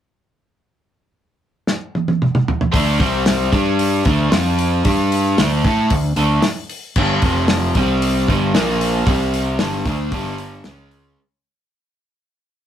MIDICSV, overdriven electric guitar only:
0, 0, Header, 1, 3, 480
1, 0, Start_track
1, 0, Key_signature, -1, "minor"
1, 0, Tempo, 528634
1, 569, Time_signature, 4, 2, 24, 8
1, 11503, End_track
2, 0, Start_track
2, 0, Title_t, "Overdriven electric guitar"
2, 0, Program_c, 0, 29
2, 2469, Note_on_c, 0, 50, 88
2, 2474, Note_on_c, 0, 57, 97
2, 2480, Note_on_c, 0, 62, 94
2, 2709, Note_off_c, 0, 50, 0
2, 2713, Note_on_c, 0, 48, 85
2, 2714, Note_off_c, 0, 57, 0
2, 2717, Note_off_c, 0, 62, 0
2, 2723, Note_on_c, 0, 55, 95
2, 2725, Note_on_c, 0, 60, 94
2, 3187, Note_off_c, 0, 55, 0
2, 3193, Note_off_c, 0, 48, 0
2, 3198, Note_on_c, 0, 55, 89
2, 3199, Note_off_c, 0, 60, 0
2, 3208, Note_on_c, 0, 62, 80
2, 3211, Note_on_c, 0, 67, 86
2, 3675, Note_off_c, 0, 55, 0
2, 3677, Note_on_c, 0, 50, 75
2, 3680, Note_off_c, 0, 62, 0
2, 3682, Note_off_c, 0, 67, 0
2, 3689, Note_on_c, 0, 57, 85
2, 3698, Note_on_c, 0, 62, 97
2, 3909, Note_off_c, 0, 50, 0
2, 3913, Note_on_c, 0, 53, 97
2, 3917, Note_off_c, 0, 57, 0
2, 3921, Note_on_c, 0, 60, 108
2, 3925, Note_off_c, 0, 62, 0
2, 3929, Note_on_c, 0, 65, 110
2, 4392, Note_off_c, 0, 53, 0
2, 4396, Note_off_c, 0, 60, 0
2, 4400, Note_off_c, 0, 65, 0
2, 4406, Note_on_c, 0, 55, 80
2, 4416, Note_on_c, 0, 62, 107
2, 4418, Note_on_c, 0, 67, 95
2, 4878, Note_off_c, 0, 55, 0
2, 4883, Note_off_c, 0, 62, 0
2, 4883, Note_off_c, 0, 67, 0
2, 4886, Note_on_c, 0, 50, 88
2, 4890, Note_on_c, 0, 57, 92
2, 4896, Note_on_c, 0, 62, 103
2, 5118, Note_off_c, 0, 50, 0
2, 5120, Note_off_c, 0, 57, 0
2, 5122, Note_off_c, 0, 62, 0
2, 5130, Note_on_c, 0, 57, 87
2, 5134, Note_on_c, 0, 64, 87
2, 5145, Note_on_c, 0, 69, 84
2, 5359, Note_off_c, 0, 57, 0
2, 5361, Note_off_c, 0, 64, 0
2, 5367, Note_off_c, 0, 69, 0
2, 5367, Note_on_c, 0, 50, 64
2, 5374, Note_on_c, 0, 57, 65
2, 5557, Note_off_c, 0, 50, 0
2, 5560, Note_off_c, 0, 57, 0
2, 5602, Note_on_c, 0, 50, 90
2, 5614, Note_on_c, 0, 57, 82
2, 5617, Note_on_c, 0, 62, 90
2, 5834, Note_off_c, 0, 50, 0
2, 5841, Note_off_c, 0, 57, 0
2, 5842, Note_off_c, 0, 62, 0
2, 6331, Note_on_c, 0, 43, 85
2, 6340, Note_on_c, 0, 50, 103
2, 6348, Note_on_c, 0, 55, 100
2, 6558, Note_off_c, 0, 43, 0
2, 6563, Note_off_c, 0, 50, 0
2, 6565, Note_on_c, 0, 41, 82
2, 6567, Note_off_c, 0, 55, 0
2, 6569, Note_on_c, 0, 48, 83
2, 6575, Note_on_c, 0, 53, 104
2, 7035, Note_off_c, 0, 41, 0
2, 7037, Note_off_c, 0, 48, 0
2, 7040, Note_off_c, 0, 53, 0
2, 7048, Note_on_c, 0, 48, 91
2, 7056, Note_on_c, 0, 55, 97
2, 7066, Note_on_c, 0, 60, 102
2, 7516, Note_off_c, 0, 48, 0
2, 7518, Note_on_c, 0, 43, 87
2, 7520, Note_off_c, 0, 55, 0
2, 7525, Note_off_c, 0, 60, 0
2, 7527, Note_on_c, 0, 50, 88
2, 7531, Note_on_c, 0, 55, 89
2, 7751, Note_off_c, 0, 43, 0
2, 7753, Note_off_c, 0, 50, 0
2, 7756, Note_on_c, 0, 46, 102
2, 7758, Note_off_c, 0, 55, 0
2, 7762, Note_on_c, 0, 53, 98
2, 7766, Note_on_c, 0, 58, 113
2, 8223, Note_off_c, 0, 46, 0
2, 8225, Note_off_c, 0, 53, 0
2, 8227, Note_on_c, 0, 48, 98
2, 8229, Note_on_c, 0, 55, 94
2, 8235, Note_off_c, 0, 58, 0
2, 8241, Note_on_c, 0, 60, 94
2, 8705, Note_on_c, 0, 43, 90
2, 8706, Note_off_c, 0, 48, 0
2, 8707, Note_off_c, 0, 55, 0
2, 8711, Note_on_c, 0, 50, 95
2, 8713, Note_off_c, 0, 60, 0
2, 8719, Note_on_c, 0, 55, 99
2, 8939, Note_off_c, 0, 50, 0
2, 8945, Note_off_c, 0, 43, 0
2, 8950, Note_on_c, 0, 50, 81
2, 8952, Note_off_c, 0, 55, 0
2, 8959, Note_on_c, 0, 57, 86
2, 8966, Note_on_c, 0, 62, 87
2, 9180, Note_off_c, 0, 50, 0
2, 9183, Note_on_c, 0, 43, 80
2, 9191, Note_on_c, 0, 50, 83
2, 9192, Note_off_c, 0, 57, 0
2, 9196, Note_off_c, 0, 62, 0
2, 9199, Note_on_c, 0, 55, 98
2, 9665, Note_off_c, 0, 43, 0
2, 9669, Note_off_c, 0, 50, 0
2, 9673, Note_off_c, 0, 55, 0
2, 9684, Note_on_c, 0, 49, 89
2, 9689, Note_on_c, 0, 56, 106
2, 9694, Note_on_c, 0, 61, 107
2, 10156, Note_off_c, 0, 49, 0
2, 10158, Note_off_c, 0, 56, 0
2, 10161, Note_off_c, 0, 61, 0
2, 11503, End_track
3, 0, Start_track
3, 0, Title_t, "Muted overdriven electric guitar strokes"
3, 5861, Note_on_c, 9, 29, 65
3, 5952, Note_off_c, 9, 29, 0
3, 11503, End_track
0, 0, End_of_file